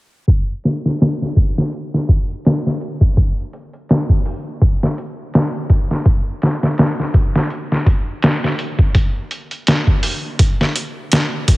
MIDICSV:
0, 0, Header, 1, 2, 480
1, 0, Start_track
1, 0, Tempo, 722892
1, 183, Time_signature, 4, 2, 24, 8
1, 7682, End_track
2, 0, Start_track
2, 0, Title_t, "Drums"
2, 184, Note_on_c, 9, 36, 90
2, 184, Note_on_c, 9, 42, 72
2, 250, Note_off_c, 9, 42, 0
2, 251, Note_off_c, 9, 36, 0
2, 424, Note_on_c, 9, 42, 59
2, 433, Note_on_c, 9, 38, 48
2, 490, Note_off_c, 9, 42, 0
2, 499, Note_off_c, 9, 38, 0
2, 568, Note_on_c, 9, 38, 38
2, 634, Note_off_c, 9, 38, 0
2, 666, Note_on_c, 9, 42, 76
2, 675, Note_on_c, 9, 38, 99
2, 732, Note_off_c, 9, 42, 0
2, 742, Note_off_c, 9, 38, 0
2, 809, Note_on_c, 9, 38, 32
2, 876, Note_off_c, 9, 38, 0
2, 906, Note_on_c, 9, 36, 82
2, 907, Note_on_c, 9, 42, 61
2, 972, Note_off_c, 9, 36, 0
2, 973, Note_off_c, 9, 42, 0
2, 1049, Note_on_c, 9, 38, 46
2, 1116, Note_off_c, 9, 38, 0
2, 1146, Note_on_c, 9, 42, 68
2, 1213, Note_off_c, 9, 42, 0
2, 1289, Note_on_c, 9, 38, 33
2, 1356, Note_off_c, 9, 38, 0
2, 1386, Note_on_c, 9, 36, 76
2, 1387, Note_on_c, 9, 42, 56
2, 1453, Note_off_c, 9, 36, 0
2, 1454, Note_off_c, 9, 42, 0
2, 1627, Note_on_c, 9, 42, 79
2, 1636, Note_on_c, 9, 38, 106
2, 1694, Note_off_c, 9, 42, 0
2, 1703, Note_off_c, 9, 38, 0
2, 1770, Note_on_c, 9, 38, 43
2, 1836, Note_off_c, 9, 38, 0
2, 1867, Note_on_c, 9, 42, 59
2, 1933, Note_off_c, 9, 42, 0
2, 1999, Note_on_c, 9, 36, 84
2, 2065, Note_off_c, 9, 36, 0
2, 2106, Note_on_c, 9, 36, 99
2, 2106, Note_on_c, 9, 42, 77
2, 2172, Note_off_c, 9, 36, 0
2, 2172, Note_off_c, 9, 42, 0
2, 2346, Note_on_c, 9, 42, 63
2, 2412, Note_off_c, 9, 42, 0
2, 2480, Note_on_c, 9, 42, 39
2, 2546, Note_off_c, 9, 42, 0
2, 2585, Note_on_c, 9, 42, 75
2, 2594, Note_on_c, 9, 38, 102
2, 2651, Note_off_c, 9, 42, 0
2, 2661, Note_off_c, 9, 38, 0
2, 2718, Note_on_c, 9, 36, 78
2, 2784, Note_off_c, 9, 36, 0
2, 2826, Note_on_c, 9, 46, 66
2, 2893, Note_off_c, 9, 46, 0
2, 3065, Note_on_c, 9, 36, 87
2, 3066, Note_on_c, 9, 42, 70
2, 3131, Note_off_c, 9, 36, 0
2, 3132, Note_off_c, 9, 42, 0
2, 3208, Note_on_c, 9, 38, 48
2, 3275, Note_off_c, 9, 38, 0
2, 3307, Note_on_c, 9, 42, 56
2, 3374, Note_off_c, 9, 42, 0
2, 3544, Note_on_c, 9, 42, 77
2, 3553, Note_on_c, 9, 38, 107
2, 3610, Note_off_c, 9, 42, 0
2, 3620, Note_off_c, 9, 38, 0
2, 3783, Note_on_c, 9, 36, 82
2, 3783, Note_on_c, 9, 42, 64
2, 3849, Note_off_c, 9, 36, 0
2, 3849, Note_off_c, 9, 42, 0
2, 3924, Note_on_c, 9, 38, 33
2, 3991, Note_off_c, 9, 38, 0
2, 4021, Note_on_c, 9, 42, 73
2, 4022, Note_on_c, 9, 36, 100
2, 4088, Note_off_c, 9, 36, 0
2, 4088, Note_off_c, 9, 42, 0
2, 4262, Note_on_c, 9, 42, 64
2, 4271, Note_on_c, 9, 38, 50
2, 4328, Note_off_c, 9, 42, 0
2, 4338, Note_off_c, 9, 38, 0
2, 4403, Note_on_c, 9, 38, 44
2, 4470, Note_off_c, 9, 38, 0
2, 4501, Note_on_c, 9, 42, 78
2, 4510, Note_on_c, 9, 38, 106
2, 4568, Note_off_c, 9, 42, 0
2, 4577, Note_off_c, 9, 38, 0
2, 4645, Note_on_c, 9, 38, 33
2, 4711, Note_off_c, 9, 38, 0
2, 4741, Note_on_c, 9, 36, 90
2, 4742, Note_on_c, 9, 42, 60
2, 4807, Note_off_c, 9, 36, 0
2, 4808, Note_off_c, 9, 42, 0
2, 4884, Note_on_c, 9, 38, 50
2, 4950, Note_off_c, 9, 38, 0
2, 4982, Note_on_c, 9, 42, 69
2, 5048, Note_off_c, 9, 42, 0
2, 5126, Note_on_c, 9, 38, 35
2, 5192, Note_off_c, 9, 38, 0
2, 5221, Note_on_c, 9, 36, 79
2, 5223, Note_on_c, 9, 42, 53
2, 5288, Note_off_c, 9, 36, 0
2, 5289, Note_off_c, 9, 42, 0
2, 5461, Note_on_c, 9, 42, 87
2, 5470, Note_on_c, 9, 38, 115
2, 5527, Note_off_c, 9, 42, 0
2, 5537, Note_off_c, 9, 38, 0
2, 5605, Note_on_c, 9, 38, 47
2, 5672, Note_off_c, 9, 38, 0
2, 5702, Note_on_c, 9, 42, 64
2, 5769, Note_off_c, 9, 42, 0
2, 5834, Note_on_c, 9, 36, 81
2, 5901, Note_off_c, 9, 36, 0
2, 5940, Note_on_c, 9, 42, 78
2, 5941, Note_on_c, 9, 36, 97
2, 6007, Note_off_c, 9, 36, 0
2, 6007, Note_off_c, 9, 42, 0
2, 6181, Note_on_c, 9, 42, 66
2, 6248, Note_off_c, 9, 42, 0
2, 6315, Note_on_c, 9, 42, 41
2, 6382, Note_off_c, 9, 42, 0
2, 6421, Note_on_c, 9, 42, 74
2, 6430, Note_on_c, 9, 38, 106
2, 6487, Note_off_c, 9, 42, 0
2, 6496, Note_off_c, 9, 38, 0
2, 6554, Note_on_c, 9, 36, 83
2, 6620, Note_off_c, 9, 36, 0
2, 6659, Note_on_c, 9, 46, 72
2, 6726, Note_off_c, 9, 46, 0
2, 6900, Note_on_c, 9, 42, 72
2, 6901, Note_on_c, 9, 36, 96
2, 6967, Note_off_c, 9, 42, 0
2, 6968, Note_off_c, 9, 36, 0
2, 7045, Note_on_c, 9, 38, 47
2, 7111, Note_off_c, 9, 38, 0
2, 7142, Note_on_c, 9, 42, 60
2, 7208, Note_off_c, 9, 42, 0
2, 7381, Note_on_c, 9, 42, 82
2, 7390, Note_on_c, 9, 38, 112
2, 7447, Note_off_c, 9, 42, 0
2, 7457, Note_off_c, 9, 38, 0
2, 7622, Note_on_c, 9, 42, 68
2, 7623, Note_on_c, 9, 36, 86
2, 7682, Note_off_c, 9, 36, 0
2, 7682, Note_off_c, 9, 42, 0
2, 7682, End_track
0, 0, End_of_file